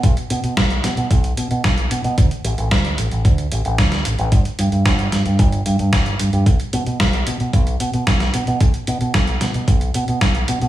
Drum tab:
HH |xxxxxxxxxxxxxxxx|xxxxxxxxxxxxxxxx|xxxxxxxxxxxxxxxx|xxxxxxxxxxxxxxxx|
SD |----o-o-----o---|----o-------oo--|----o-o-----o---|----o-------oo--|
BD |o---o---o---o---|o---o---o---o---|o---o---o---o---|o---o---o---o---|

HH |xxxxxxxxxxxxxxxx|
SD |----o-o-----o---|
BD |o---o---o---o---|